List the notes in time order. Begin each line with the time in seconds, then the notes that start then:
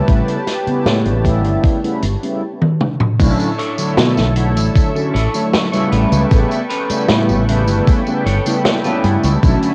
Already playing: G4 B4 C#5 A5
0.07 A1 C#3 G3 A3 B3 E4, kick, closed hi-hat
0.28 closed hi-hat
0.47 snare, closed hi-hat
0.66 C#3 G3 A3 B3 E4, muted fretless electric bass stroke, closed hi-hat
0.86 A2, snare, closed hi-hat
1.05 A1, closed hi-hat
1.24 C#3 G3 A3 B3 E4, kick, closed hi-hat
1.44 G1, closed hi-hat
1.64 kick, closed hi-hat
1.83 C#3 G3 A3 B3 E4, closed hi-hat
2.02 G1, closed hi-hat
2.22 C#3 G3 A3 B3 E4, closed hi-hat
2.62 high tom
2.81 mid tom
3.00 mid tom
3.19 B1 D3 F#3 A3 C#4 E4 A4 E5 C#6, kick, closed hi-hat, tambourine, crash
3.39 closed hi-hat, tambourine
3.58 D4 E4 A4 C#5, closed hi-hat
3.78 D3 F#3 A3 E4 C#5, closed hi-hat, tambourine
3.97 B2, snare, closed hi-hat, tambourine
4.17 B1, snare, tambourine
4.36 D3 F#3 A3 E4 C#5, muted clean electric guitar stroke, closed hi-hat
4.56 A1, closed hi-hat, tambourine
4.75 kick, closed hi-hat, tambourine
4.94 D3 F#3 A3 C#4 E4, muted clean electric guitar stroke, tambourine
5.14 A1 D4 E4 A4 C#5, closed hi-hat
5.33 D3 F#3 A3 E4 C#5, closed hi-hat, tambourine
5.54 snare, closed hi-hat, tambourine
5.72 C#3 G3 A3 B3 D4 E4 A4 C#5, closed hi-hat, tambourine
5.92 A1 C#4 G4 A4 B4 G5 A5, closed hi-hat
6.12 C#2, closed hi-hat, tambourine
6.31 A1 C#3 G3 A3 B3 E4, kick, closed hi-hat, tambourine
6.51 closed hi-hat, tambourine
6.70 C#4 G4 A4 B4, closed hi-hat
6.89 C#3 G3 A3 B3 E4, muted fretless electric bass stroke, closed hi-hat, tambourine
7.09 A2, snare, closed hi-hat, tambourine
7.29 A1, tambourine
7.48 C#3 G3 A3 B3 E4, muted clean electric guitar stroke, closed hi-hat
7.67 G1, closed hi-hat, tambourine
7.87 kick, closed hi-hat, tambourine
8.06 C#3 G3 A3 B3 E4, muted clean electric guitar stroke, tambourine
8.26 G1 C#4 G4 A4 C#5, closed hi-hat
8.45 C#3 G3 A3 B3 E4, closed hi-hat, tambourine
8.65 snare, closed hi-hat, tambourine
8.84 C#3 G3 A3 B3 C#4 E4 G4 A4 B4, closed hi-hat, tambourine
9.04 G2, closed hi-hat
9.23 C#2, muted clean electric guitar stroke, closed hi-hat, tambourine
9.42 B1 D3 F#3 A3 C#4 E4 E5, kick, closed hi-hat, tambourine
9.62 closed hi-hat, tambourine